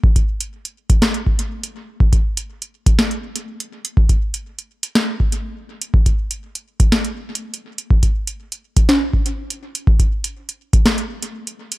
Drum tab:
HH |--x---x---x---x---x---x---x-----|--x---x---x---x---x---x---x---x-|--x---x---x---x-------x-------x-|--x---x---x---x---x----x--x---x-|
SD |----------------o---------------|----------------o---------------|----------------o---------------|----------------o---------------|
BD |o-o-----------o-----o-----------|o-o-----------o-----------------|o-o-----------------o-----------|o-o-----------o-----------------|

HH |--x---x---x---x-------x---x---x-|--x---x---x---x---x---x---x---x-|
SD |----------------o---------------|----------------o---------------|
BD |o-o-----------o-----o-----------|o-o-----------o-----------------|